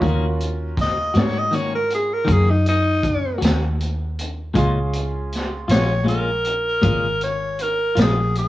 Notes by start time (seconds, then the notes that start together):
0.00 D#2 D#3 A#3 C#4 F4 F#4 A#4, kick, closed hi-hat
0.40 closed hi-hat
0.77 kick, snare, closed hi-hat
0.81 D#5
1.14 G#2 A#3 C#4 F#4, snare, closed hi-hat
1.20 C#5
1.39 D#5
1.51 D#3 A#3 C#4 F#4, closed hi-hat
1.55 C#5
1.75 A#4
1.90 closed hi-hat
1.95 G#4
2.13 A#4
2.25 F#2 D#3 A#3 C#4 F#4, kick, closed hi-hat
2.32 G#4
2.50 D#4
2.66 D#4, closed hi-hat
3.04 kick, closed hi-hat
3.38 D#2 A#3 C#4 F#4, closed hi-hat
3.45 snare
3.81 closed hi-hat
4.19 closed hi-hat
4.54 C#2 A#2 G#3 C#4 F4 G#4, kick, closed hi-hat
4.58 C6
4.94 closed hi-hat
5.33 snare, closed hi-hat
5.68 A#1 G#3 C#4 F4 C#5, snare, closed hi-hat
6.04 A#2 G#3 C#4 F4
6.08 A#4, closed hi-hat
6.45 closed hi-hat
6.82 G#1 A#2 G#3 C#4 F4, kick, closed hi-hat
7.21 C#5, closed hi-hat
7.59 A#4, closed hi-hat
7.95 A#1 G#3 C#4 F4, snare, closed hi-hat
8.02 G#4
8.35 G#4, closed hi-hat